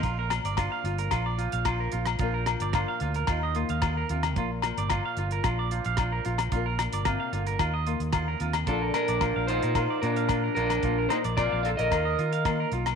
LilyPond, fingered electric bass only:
\new Staff \with { instrumentName = "Fingered electric bass" } { \clef bass \time 4/4 \key bes \major \tempo 4 = 111 bes,,8. g,,8 r16 g,,8 bes,,8. bes,,8. bes,,8 | bes,,8. g,,8 r16 d,8 ees,8. ees,8. ees,8 | bes,,8. g,,8 r16 g,,8 bes,,8. bes,,8. bes,,8 | bes,,8. g,,8 r16 g,,8 ees,8. ees,8. ees,8 |
bes,,8 r16 bes,,8 bes,,8 bes,8 r16 bes,4 bes,,8 | bes,,8 r16 bes,,8 bes,,8 bes,,16 ees,8 ees4 ces,8 | }